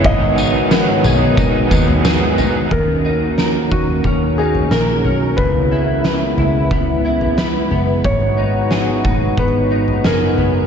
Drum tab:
TB |--x-x-x-x-x-x-x-|----------------|----------------|----------------|
SD |----o-------o---|----o-------o---|----o-------o---|----o-------o---|
FT |o-----o-o--o--o-|o-----o-o--o--o-|o-----o-o--o--o-|o-----o-o--o--o-|
BD |o-------o-o-----|o-----o-o-------|o-------o-------|o-----o-o-------|